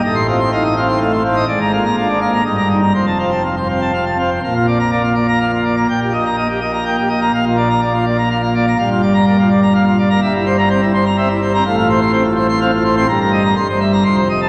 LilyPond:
<<
  \new Staff \with { instrumentName = "Pipe organ" } { \time 3/4 \key bes \major \tempo 4 = 124 ees''16 c'''16 f'16 c'''16 f'16 ees''16 f''16 c'''16 f''16 c'''16 f''16 ees''16 | d''16 bes''16 f'16 bes''16 f'16 d''16 f''16 bes''16 ees''16 bes''16 ees'16 bes''16 | c''16 a''16 f'16 a''16 f'16 c''16 f''16 a''16 f''16 a''16 f''16 c''16 | f''16 f'16 d''16 bes''16 d''16 f'16 d''16 bes''16 f''16 f'16 d''16 bes''16 |
g''16 g'16 ees''16 bes''16 ees''16 g'16 ees''16 bes''16 g''16 g'16 ees''16 bes''16 | f''16 f'16 d''16 bes''16 d''16 f'16 d''16 bes''16 f''16 f'16 d''16 bes''16 | f''16 f'16 d''16 bes''16 d''16 f'16 d''16 bes''16 f''16 f'16 d''16 bes''16 | e''16 e'16 c''16 bes''16 c''16 e'16 c''16 bes''16 e''16 e'16 c''16 bes''16 |
f''16 f'16 c''16 c'''16 c''16 f'16 c''16 c'''16 f''16 f'16 c''16 c'''16 | bes''16 bes'16 ees''16 bes''16 c'''16 c''16 e''16 bes''16 c'''16 c''16 ees''16 a''16 | }
  \new Staff \with { instrumentName = "Pipe organ" } { \time 3/4 \key bes \major << { a,8 c'8 ees'8 c'8 a8 c'8 | aes,8 bes8 d'8 bes8 g,4 | f,8 c'8 r8 c'8 c8 c'8 | bes,4 bes16 r8. bes16 r8 bes16 |
bes,4 bes16 r8. bes16 r8 bes16 | bes,4 bes16 r8. bes16 r8 bes16 | g,4 bes16 r8. bes16 r8 bes16 | g,4 c'16 r8. c'16 r8 c'16 |
a,4 c'16 r8. c'16 r8 c'16 | g,4 g,4 f,4 | } \\ { a,,2. | aes,,2 g,,4 | f,,2. | bes,,2. |
bes,,2. | bes,,2. | g,,2. | g,,2. |
a,,2. | g,,4 g,,4 f,,4 | } >> }
>>